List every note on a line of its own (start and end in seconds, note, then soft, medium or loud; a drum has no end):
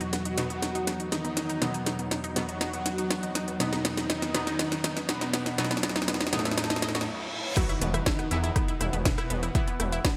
0.00 7.03 E2 medium
0.00 0.35 B2 loud
0.00 0.35 F#3 medium
0.00 1.12 F#3 loud
0.00 7.03 F#3 medium
0.00 0.35 B3 loud
0.00 7.03 B3 medium
0.00 7.03 D#4 medium
0.00 0.09 D#4 loud
0.00 1.14 F#4 loud
0.00 closed hi-hat soft
0.00 riser medium
0.13 0.22 B3 medium
0.13 snare medium
0.13 closed hi-hat medium
0.25 0.29 D#4 medium
0.25 closed hi-hat medium
0.38 0.44 B2 loud
0.38 0.44 F#3 medium
0.38 0.44 B3 loud
0.38 0.47 D#4 loud
0.38 snare medium
0.38 closed hi-hat loud
0.50 0.59 B3 medium
0.50 closed hi-hat soft
0.62 0.66 D#4 medium
0.62 snare medium
0.62 closed hi-hat medium
0.75 0.84 D#4 loud
0.75 closed hi-hat soft
0.87 0.96 B3 medium
0.87 snare medium
0.87 closed hi-hat loud
1.00 1.03 D#4 medium
1.00 closed hi-hat soft
1.12 1.77 D#3 loud
1.12 1.77 D#4 loud
1.12 1.21 D#4 loud
1.12 snare medium
1.12 closed hi-hat medium
1.25 1.33 B3 medium
1.25 closed hi-hat soft
1.37 1.40 D#4 medium
1.37 snare medium
1.37 closed hi-hat loud
1.49 1.58 D#4 medium
1.49 closed hi-hat soft
1.62 2.33 B2 medium
1.62 2.33 F#3 medium
1.62 2.33 B3 loud
1.62 1.70 B3 medium
1.62 snare medium
1.62 closed hi-hat medium
1.74 1.78 D#4 medium
1.74 closed hi-hat soft
1.86 1.95 D#4 loud
1.86 snare medium
1.86 closed hi-hat loud
1.99 2.08 B3 medium
1.99 closed hi-hat soft
2.11 2.15 D#4 medium
2.11 snare medium
2.11 closed hi-hat medium
2.24 2.32 D#4 loud
2.24 closed hi-hat soft
2.36 2.43 B2 loud
2.36 2.43 F#3 medium
2.36 3.50 F#3 loud
2.36 2.43 B3 loud
2.36 2.45 B3 medium
2.36 3.50 F#4 loud
2.36 snare medium
2.36 closed hi-hat loud
2.49 2.52 D#4 medium
2.49 closed hi-hat soft
2.61 2.70 D#4 loud
2.61 snare medium
2.61 closed hi-hat medium
2.73 2.82 B3 medium
2.73 closed hi-hat soft
2.86 2.89 D#4 medium
2.86 snare medium
2.86 closed hi-hat loud
2.98 3.07 D#4 loud
2.98 closed hi-hat soft
3.10 3.19 B3 medium
3.10 snare medium
3.10 closed hi-hat medium
3.23 3.26 D#4 medium
3.23 closed hi-hat soft
3.35 3.44 D#4 loud
3.35 snare loud
3.35 closed hi-hat loud
3.48 3.56 B3 medium
3.48 closed hi-hat soft
3.60 4.31 B2 medium
3.60 4.99 D#3 loud
3.60 4.31 F#3 medium
3.60 4.31 B3 loud
3.60 4.99 D#4 loud
3.60 3.64 D#4 medium
3.60 snare medium
3.60 closed hi-hat medium
3.73 3.81 D#4 loud
3.73 snare medium
3.73 closed hi-hat soft
3.85 3.94 B3 medium
3.85 snare medium
3.85 closed hi-hat loud
3.97 4.01 D#4 medium
3.97 snare medium
3.97 closed hi-hat soft
4.10 4.18 D#4 loud
4.10 snare medium
4.10 closed hi-hat medium
4.22 4.31 B3 medium
4.22 snare medium
4.22 closed hi-hat medium
4.34 4.41 B2 medium
4.34 4.41 F#3 medium
4.34 4.41 B3 loud
4.34 4.38 D#4 medium
4.34 snare loud
4.34 closed hi-hat loud
4.47 4.56 D#4 loud
4.47 snare medium
4.47 closed hi-hat soft
4.59 4.68 B3 medium
4.59 snare loud
4.59 closed hi-hat medium
4.72 4.75 D#4 medium
4.72 snare medium
4.72 closed hi-hat soft
4.84 4.93 D#4 loud
4.84 snare loud
4.84 closed hi-hat loud
4.97 5.05 B3 medium
4.97 snare medium
4.97 closed hi-hat soft
5.09 5.73 B2 loud
5.09 5.73 B3 loud
5.09 5.12 D#4 medium
5.09 snare loud
5.09 closed hi-hat medium
5.21 5.30 D#4 loud
5.21 snare medium
5.21 closed hi-hat soft
5.33 5.42 B3 medium
5.33 snare loud
5.33 closed hi-hat loud
5.46 5.50 D#4 medium
5.46 snare medium
5.46 closed hi-hat soft
5.58 6.30 B2 medium
5.58 6.30 F#3 medium
5.58 6.30 B3 loud
5.58 5.67 D#4 loud
5.58 snare loud
5.58 closed hi-hat medium
5.65 snare medium
5.71 5.80 B3 medium
5.71 snare medium
5.71 closed hi-hat soft
5.77 snare medium
5.83 5.87 D#4 medium
5.83 snare loud
5.83 closed hi-hat loud
5.89 snare medium
5.96 6.04 D#4 loud
5.96 snare medium
5.96 closed hi-hat soft
6.02 snare medium
6.08 6.17 B3 medium
6.08 snare loud
6.08 closed hi-hat medium
6.14 snare loud
6.21 6.24 D#4 medium
6.21 snare medium
6.21 closed hi-hat medium
6.27 snare medium
6.33 7.07 A2 loud
6.33 6.39 B2 loud
6.33 6.39 F#3 medium
6.33 7.07 A3 loud
6.33 6.39 B3 loud
6.33 6.42 D#4 loud
6.33 snare loud
6.33 closed hi-hat loud
6.39 snare medium
6.45 6.54 B3 medium
6.45 snare medium
6.45 closed hi-hat soft
6.51 snare medium
6.58 6.61 D#4 medium
6.58 snare loud
6.58 closed hi-hat medium
6.58 reverse cymbal medium
6.64 snare loud
6.70 6.79 D#4 loud
6.70 snare medium
6.70 closed hi-hat soft
6.76 snare loud
6.82 6.88 D#5 loud
6.82 snare loud
6.82 closed hi-hat loud
6.89 snare medium
6.95 6.98 F#4 medium
6.95 snare loud
6.95 closed hi-hat soft
7.01 snare loud
7.57 8.96 D#3 loud
7.57 8.28 F#3 medium
7.57 8.28 B3 medium
7.57 8.96 D#4 loud
7.57 7.60 E4 medium
7.57 10.17 F#4 medium
7.57 8.28 F#4 loud
7.57 10.17 B4 medium
7.57 7.60 E5 medium
7.57 10.17 F#5 medium
7.57 kick loud
7.57 cross-stick soft
7.57 closed hi-hat medium
7.57 crash loud
7.57 impact medium
7.69 7.78 E4 loud
7.69 7.78 E5 medium
7.69 closed hi-hat soft
7.82 8.01 E1 loud
7.82 7.90 B3 medium
7.82 7.90 B4 medium
7.82 closed hi-hat loud
7.94 7.97 E4 medium
7.94 7.97 E5 medium
7.94 cross-stick medium
7.94 closed hi-hat soft
8.06 8.15 E4 loud
8.06 8.15 E5 medium
8.06 kick loud
8.06 snare loud
8.06 closed hi-hat medium
8.19 8.27 B3 medium
8.19 8.27 B4 medium
8.19 cross-stick medium
8.19 closed hi-hat soft
8.31 8.51 E2 medium
8.31 8.38 E3 loud
8.31 8.38 B3 medium
8.31 8.35 E4 medium
8.31 8.38 E4 loud
8.31 8.35 E5 medium
8.31 closed hi-hat loud
8.44 8.52 E4 loud
8.44 8.52 E5 medium
8.44 closed hi-hat soft
8.56 8.65 B3 medium
8.56 8.65 B4 medium
8.56 kick loud
8.56 cross-stick medium
8.56 closed hi-hat medium
8.68 8.72 E4 medium
8.68 8.72 E5 medium
8.68 closed hi-hat soft
8.80 8.91 E1 loud
8.80 8.89 E4 loud
8.80 8.89 E5 medium
8.80 cross-stick soft
8.80 closed hi-hat loud
8.93 9.13 E1 medium
8.93 9.02 B3 medium
8.93 9.02 B4 medium
8.93 closed hi-hat soft
9.05 9.70 B2 loud
9.05 9.70 B3 loud
9.05 9.09 E4 medium
9.05 9.09 E5 medium
9.05 kick loud
9.05 snare loud
9.05 closed hi-hat medium
9.18 9.26 E4 loud
9.18 9.26 E5 medium
9.18 cross-stick medium
9.18 closed hi-hat soft
9.30 9.50 E1 medium
9.30 9.39 B3 medium
9.30 9.39 B4 medium
9.30 closed hi-hat loud
9.43 9.46 E4 medium
9.43 9.46 E5 medium
9.43 cross-stick medium
9.43 closed hi-hat soft
9.55 10.17 E3 loud
9.55 10.17 B3 medium
9.55 9.64 E4 loud
9.55 10.17 E4 loud
9.55 9.64 E5 medium
9.55 kick loud
9.55 closed hi-hat medium
9.68 9.76 B3 medium
9.68 9.76 B4 medium
9.68 closed hi-hat soft
9.80 10.00 E1 medium
9.80 9.83 E4 medium
9.80 9.83 E5 medium
9.80 cross-stick medium
9.80 closed hi-hat loud
9.92 10.01 E4 loud
9.92 10.01 E5 medium
9.92 closed hi-hat soft
10.05 10.13 B3 medium
10.05 10.13 B4 medium
10.05 kick loud
10.05 cross-stick soft
10.05 snare loud
10.05 closed hi-hat medium